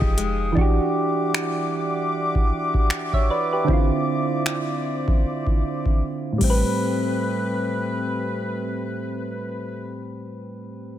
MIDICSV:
0, 0, Header, 1, 6, 480
1, 0, Start_track
1, 0, Key_signature, 0, "minor"
1, 0, Tempo, 779221
1, 350, Time_signature, 4, 2, 24, 8
1, 6767, End_track
2, 0, Start_track
2, 0, Title_t, "Woodwind section"
2, 0, Program_c, 0, 71
2, 0, Note_on_c, 0, 56, 86
2, 0, Note_on_c, 0, 77, 76
2, 0, Note_on_c, 0, 79, 79
2, 0, Note_on_c, 0, 87, 94
2, 329, Note_off_c, 0, 56, 0
2, 329, Note_off_c, 0, 77, 0
2, 329, Note_off_c, 0, 79, 0
2, 329, Note_off_c, 0, 87, 0
2, 351, Note_on_c, 0, 78, 77
2, 352, Note_on_c, 0, 55, 84
2, 352, Note_on_c, 0, 76, 77
2, 352, Note_on_c, 0, 86, 94
2, 2251, Note_off_c, 0, 78, 0
2, 2252, Note_off_c, 0, 55, 0
2, 2270, Note_on_c, 0, 74, 76
2, 2271, Note_on_c, 0, 72, 82
2, 3846, Note_off_c, 0, 72, 0
2, 3846, Note_off_c, 0, 74, 0
2, 3846, Note_off_c, 0, 76, 0
2, 3846, Note_off_c, 0, 86, 0
2, 3951, Note_on_c, 0, 57, 80
2, 3951, Note_on_c, 0, 60, 86
2, 3951, Note_on_c, 0, 67, 67
2, 3951, Note_on_c, 0, 71, 72
2, 6180, Note_off_c, 0, 71, 0
2, 6181, Note_off_c, 0, 57, 0
2, 6181, Note_off_c, 0, 60, 0
2, 6181, Note_off_c, 0, 67, 0
2, 6767, End_track
3, 0, Start_track
3, 0, Title_t, "Synth keys"
3, 0, Program_c, 1, 88
3, 0, Control_c, 1, 64, 127
3, 0, Note_on_c, 1, 53, 76
3, 0, Note_on_c, 1, 63, 69
3, 0, Note_on_c, 1, 67, 73
3, 0, Note_on_c, 1, 68, 82
3, 312, Note_off_c, 1, 53, 0
3, 321, Note_off_c, 1, 63, 0
3, 322, Note_on_c, 1, 52, 78
3, 330, Note_off_c, 1, 67, 0
3, 339, Note_off_c, 1, 68, 0
3, 340, Note_on_c, 1, 62, 67
3, 357, Control_c, 1, 64, 0
3, 359, Note_on_c, 1, 66, 71
3, 377, Note_on_c, 1, 67, 87
3, 476, Control_c, 1, 64, 127
3, 1531, Note_off_c, 1, 66, 0
3, 1540, Note_off_c, 1, 67, 0
3, 1933, Note_on_c, 1, 76, 61
3, 1936, Note_on_c, 1, 73, 55
3, 2027, Note_off_c, 1, 76, 0
3, 2028, Note_off_c, 1, 73, 0
3, 2035, Note_on_c, 1, 74, 67
3, 2038, Note_on_c, 1, 71, 55
3, 2164, Note_off_c, 1, 71, 0
3, 2165, Note_off_c, 1, 74, 0
3, 2172, Note_on_c, 1, 71, 60
3, 2175, Note_on_c, 1, 67, 50
3, 2231, Note_off_c, 1, 52, 0
3, 2240, Note_off_c, 1, 62, 0
3, 2244, Note_on_c, 1, 50, 76
3, 2263, Note_on_c, 1, 60, 69
3, 2277, Control_c, 1, 64, 0
3, 2280, Note_on_c, 1, 64, 68
3, 2298, Note_on_c, 1, 65, 80
3, 2398, Note_off_c, 1, 71, 0
3, 2400, Note_off_c, 1, 67, 0
3, 2400, Control_c, 1, 64, 127
3, 3896, Note_on_c, 1, 45, 77
3, 3912, Note_off_c, 1, 50, 0
3, 3922, Note_off_c, 1, 60, 0
3, 3930, Note_off_c, 1, 64, 0
3, 3932, Note_on_c, 1, 55, 70
3, 3939, Note_off_c, 1, 65, 0
3, 3959, Control_c, 1, 64, 0
3, 3966, Note_on_c, 1, 60, 67
3, 4003, Note_on_c, 1, 71, 81
3, 4047, Control_c, 1, 64, 127
3, 4196, Control_c, 1, 64, 0
3, 4295, Control_c, 1, 64, 127
3, 6126, Note_off_c, 1, 45, 0
3, 6161, Note_off_c, 1, 55, 0
3, 6196, Note_off_c, 1, 60, 0
3, 6233, Note_off_c, 1, 71, 0
3, 6767, End_track
4, 0, Start_track
4, 0, Title_t, "Nylon-string guitar"
4, 0, Program_c, 2, 24
4, 0, Note_on_c, 2, 53, 78
4, 0, Note_on_c, 2, 56, 57
4, 0, Note_on_c, 2, 63, 61
4, 0, Note_on_c, 2, 67, 63
4, 99, Note_off_c, 2, 56, 0
4, 106, Note_on_c, 2, 56, 56
4, 350, Note_off_c, 2, 53, 0
4, 404, Note_off_c, 2, 56, 0
4, 404, Note_off_c, 2, 63, 0
4, 712, Note_off_c, 2, 67, 0
4, 6767, End_track
5, 0, Start_track
5, 0, Title_t, "808-style bass"
5, 0, Program_c, 3, 38
5, 9, Note_on_c, 3, 29, 98
5, 336, Note_off_c, 3, 29, 0
5, 6767, End_track
6, 0, Start_track
6, 0, Title_t, "Drums"
6, 8, Note_on_c, 9, 36, 86
6, 70, Note_off_c, 9, 36, 0
6, 109, Note_on_c, 9, 42, 65
6, 171, Note_off_c, 9, 42, 0
6, 350, Note_on_c, 9, 36, 105
6, 411, Note_off_c, 9, 36, 0
6, 829, Note_on_c, 9, 26, 107
6, 890, Note_off_c, 9, 26, 0
6, 1449, Note_on_c, 9, 36, 81
6, 1510, Note_off_c, 9, 36, 0
6, 1689, Note_on_c, 9, 36, 79
6, 1750, Note_off_c, 9, 36, 0
6, 1787, Note_on_c, 9, 26, 100
6, 1849, Note_off_c, 9, 26, 0
6, 1928, Note_on_c, 9, 36, 84
6, 1990, Note_off_c, 9, 36, 0
6, 2270, Note_on_c, 9, 36, 102
6, 2331, Note_off_c, 9, 36, 0
6, 2747, Note_on_c, 9, 26, 109
6, 2809, Note_off_c, 9, 26, 0
6, 3128, Note_on_c, 9, 36, 91
6, 3190, Note_off_c, 9, 36, 0
6, 3367, Note_on_c, 9, 36, 76
6, 3429, Note_off_c, 9, 36, 0
6, 3607, Note_on_c, 9, 36, 78
6, 3669, Note_off_c, 9, 36, 0
6, 3948, Note_on_c, 9, 36, 94
6, 3948, Note_on_c, 9, 49, 78
6, 4009, Note_off_c, 9, 49, 0
6, 4010, Note_off_c, 9, 36, 0
6, 6767, End_track
0, 0, End_of_file